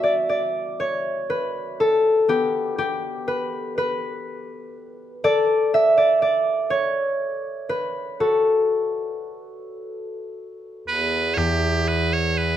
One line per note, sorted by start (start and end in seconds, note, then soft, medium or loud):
0.00 0.77 B3 soft
0.00 1.68 F#4 medium
0.00 0.10 D5 medium
0.00 1.68 E5 medium
0.00 0.18 A5 medium
0.29 0.86 D5 medium
0.80 2.71 C#5 medium
1.30 3.27 B4 medium
1.80 4.00 A4 medium
2.28 5.39 B3 medium
2.28 2.78 G4 medium
2.78 5.14 G4 medium
3.28 3.77 B4 medium
3.78 5.83 B4 medium
5.24 7.44 A4 medium
5.24 5.97 D5 loud
5.74 7.46 E5 loud
5.97 6.22 D5 medium
6.22 6.76 D5 medium
6.70 8.61 C#5 medium
7.69 9.74 B4 medium
8.20 10.64 F#4 medium
8.20 10.40 A4 medium
10.88 12.57 E2 medium
10.88 11.34 B4 medium
11.34 12.57 E2 soft
11.34 11.88 G4 medium
11.34 11.38 C#5 medium
11.88 12.13 B4 medium
12.13 12.38 C#5 medium
12.38 12.57 B4 medium